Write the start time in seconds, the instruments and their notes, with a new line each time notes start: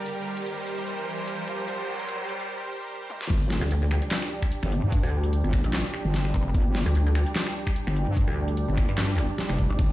Already playing: supersaw synth G3 G4 A#4, riser
0.06 supersaw synth C5, closed hi-hat
0.37 closed hi-hat
0.46 closed hi-hat
0.67 closed hi-hat
0.78 closed hi-hat
0.87 closed hi-hat
1.27 closed hi-hat
1.48 closed hi-hat
1.68 closed hi-hat
1.99 closed hi-hat
2.09 closed hi-hat
2.29 closed hi-hat
2.40 closed hi-hat
3.10 high tom
3.21 snare
3.30 wobble bass G1, supersaw synth G3 D4 D5 G5, kick, closed hi-hat, crash
3.50 snare
3.61 wobble bass D2, closed hi-hat
3.71 closed hi-hat
3.91 finger snap, open hi-hat
4.02 closed hi-hat
4.11 snare, clap, closed hi-hat
4.22 finger snap
4.42 finger snap, kick
4.52 closed hi-hat
4.63 wobble bass G1, finger snap
4.72 closed hi-hat
4.83 wobble bass G2
4.92 kick, closed hi-hat
5.03 wobble bass D2
5.24 closed hi-hat
5.33 closed hi-hat
5.44 wobble bass G1
5.53 finger snap, kick, open hi-hat
5.64 wobble bass A#1, closed hi-hat
5.73 finger snap, snare, clap, closed hi-hat
5.94 finger snap
6.05 wobble bass G1
6.14 snare, closed hi-hat
6.25 finger snap
6.34 wobble bass F1, kick, closed hi-hat
6.54 wobble bass G1, kick, closed hi-hat
6.75 snare
6.86 wobble bass D2, closed hi-hat
6.95 closed hi-hat
7.15 finger snap, open hi-hat
7.26 closed hi-hat
7.36 snare, clap, closed hi-hat
7.47 finger snap
7.67 finger snap, kick
7.76 closed hi-hat
7.87 wobble bass G1, finger snap
7.96 closed hi-hat
8.07 wobble bass G2
8.17 kick, closed hi-hat
8.28 wobble bass D2
8.48 closed hi-hat
8.57 closed hi-hat
8.68 wobble bass G1
8.77 finger snap, kick, open hi-hat
8.88 wobble bass G2, closed hi-hat
8.98 finger snap, snare, clap, closed hi-hat
9.18 finger snap
9.38 snare, closed hi-hat
9.49 wobble bass F1, finger snap
9.59 kick, closed hi-hat
9.70 wobble bass G#1
9.79 wobble bass G1, supersaw synth F5, kick, closed hi-hat, crash